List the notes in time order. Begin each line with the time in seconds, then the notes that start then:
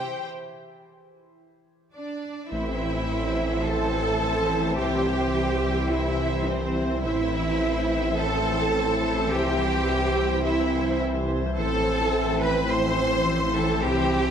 Already playing: E3 E4 G4 C5 G5
1.95 D4 D5
2.51 A1 A2 E3 C4 E4 C5 E5
3.66 A4 A5
4.77 C2 C3 G4 G5
5.91 E4 E5
6.48 C4 C5
7.04 A1 A2 E3 C4 E4 C5 E5
8.17 A4 A5
9.30 C2 C3 G4 G5
10.44 E4 E5
11.56 A1 A2 E3 C4 E4 A4 C5 E5 A5
12.43 B4 B5
12.70 C5 C6
13.55 A4 A5
13.83 C2 C3 G4 G5